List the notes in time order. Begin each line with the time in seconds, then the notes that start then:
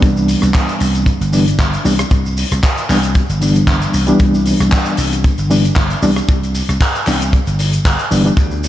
Already playing: E3 G3 B3 D4
0.02 C2, kick, closed hi-hat, shaker
0.17 shaker
0.28 open hi-hat, shaker
0.42 C2, cross-stick, closed hi-hat, shaker
0.54 kick, clap, closed hi-hat, shaker
0.68 closed hi-hat, shaker
0.80 C2, open hi-hat, shaker
0.95 closed hi-hat, shaker
1.06 kick, closed hi-hat, shaker
1.21 G1, closed hi-hat, shaker
1.32 E3 G3 B3 D4, open hi-hat, shaker
1.47 closed hi-hat, shaker
1.59 G1, kick, clap, closed hi-hat, shaker
1.73 closed hi-hat, shaker
1.85 C2 E3 G3 B3 D4, open hi-hat, shaker
1.99 cross-stick, closed hi-hat, shaker
2.11 C2, kick, closed hi-hat, shaker
2.26 shaker
2.37 open hi-hat, shaker
2.51 C2, cross-stick, closed hi-hat, shaker
2.63 kick, clap, closed hi-hat, shaker
2.78 closed hi-hat, shaker
2.89 C2 E3 G3 B3 D4, clap, open hi-hat, shaker
3.03 closed hi-hat, shaker
3.15 kick, closed hi-hat, shaker
3.29 G1, closed hi-hat, shaker
3.40 E3 G3 B3 D4, open hi-hat, shaker
3.55 closed hi-hat, shaker
3.67 G1, kick, clap, closed hi-hat, shaker
3.82 closed hi-hat, shaker
3.94 C2, open hi-hat, shaker
4.07 E3 G3 B3 D4, closed hi-hat, shaker
4.19 C2, kick, closed hi-hat, shaker
4.34 shaker
4.46 open hi-hat, shaker
4.60 C2, cross-stick, closed hi-hat, shaker
4.72 kick, clap, closed hi-hat, shaker
4.85 closed hi-hat, shaker
4.97 C2, open hi-hat, shaker
5.12 closed hi-hat, shaker
5.24 kick, closed hi-hat, shaker
5.38 G1, closed hi-hat, shaker
5.50 E3 G3 B3 D4, open hi-hat, shaker
5.65 closed hi-hat, shaker
5.76 G1, kick, clap, closed hi-hat, shaker
5.90 closed hi-hat, shaker
6.02 C2 E3 G3 B3 D4, open hi-hat, shaker
6.16 cross-stick, closed hi-hat, shaker
6.29 C2, kick, closed hi-hat, shaker
6.43 closed hi-hat, shaker
6.55 open hi-hat, shaker
6.69 C2, cross-stick, closed hi-hat, shaker
6.81 kick, clap, closed hi-hat, shaker
6.95 closed hi-hat, shaker
7.07 C2 E3 G3 B3 D4, clap, open hi-hat, shaker
7.21 closed hi-hat, shaker
7.33 kick, closed hi-hat, shaker
7.47 G1, closed hi-hat, shaker
7.59 open hi-hat, shaker
7.73 closed hi-hat, shaker
7.85 G1, kick, clap, closed hi-hat, shaker
7.99 closed hi-hat, shaker
8.11 G1 E3 G3 B3 D4, open hi-hat, shaker
8.25 E3 G3 B3 D4, closed hi-hat, shaker
8.37 D2, kick, closed hi-hat, shaker
8.51 shaker
8.64 open hi-hat, shaker